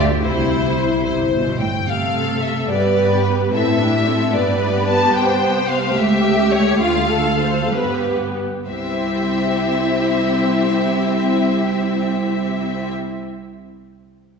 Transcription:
Already playing: D2 G4
0.22 C2 C3 E4 C5
1.05 G1 C3 C5
1.33 B2
1.60 A2 G5
1.87 C3 A3 A4 F5
2.42 E5
2.69 G2 B3 G4 B4 D5
3.23 B4
3.52 A2 C4 E4 A4 E5
3.79 D4 G4
4.06 C4 A4
4.32 G2 B3 G4 B4 D5
4.87 A5
5.14 C2 C5 G5
5.68 F5
5.95 C#2 A3 G4 E5
6.52 C#5
6.80 D2 F4 F5
7.08 A4
7.38 A4 C5
7.69 G2 B3 G4 B4
8.67 C2 C4 E4 G4 C5 E5

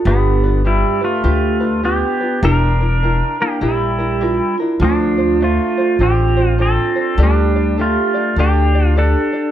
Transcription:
0.05 G1 D3 B3 D4 F4 G4 B4
0.43 D4 F4 B4
0.64 G3 D4 E4 F4 G4 B4
1.01 A3 D4 F4 B4
1.24 D2 D4 F4 G4 B4
1.60 D4 F4 B4
1.83 B3 D4 F4 G4 B4
2.20 D4 F4 B4
2.43 E1 D4 E4 G4 A#4
2.81 D4 E4 A#4
3.03 D4 E4 G4 A#4
3.40 A#3 D4 E4 G4 A#4
3.61 A#1 G3 D4 E4 G4 A#4
3.98 D4 E4 A#4
4.21 D4 E4 F4 G4 A#4
4.58 D4 E4 A#4
4.80 D2 F3 D4 F4 A4 C5
4.84 D4
5.18 D4 F4 C5
5.40 A3 D4 F4 A4 C5
5.78 D4 F4 C5
5.99 A1 C4 D4 F4 G4 A4 C5
6.37 D4 F4 C5
6.49 F4
6.58 C4 D4 F4 A4 C5
6.95 D4 F4 C5
7.18 D2 D4 G4 A4 D5
7.23 G3 D4
7.56 D4 G4 D5
7.77 A3 D4 F4 G4 A4 D5
8.14 D4 G4 D5
8.36 D2 D4 G4 A4 D5
8.75 D4 G4 D5
8.86 F4
8.95 D4 G4 A4 D5
9.33 D4 G4 D5

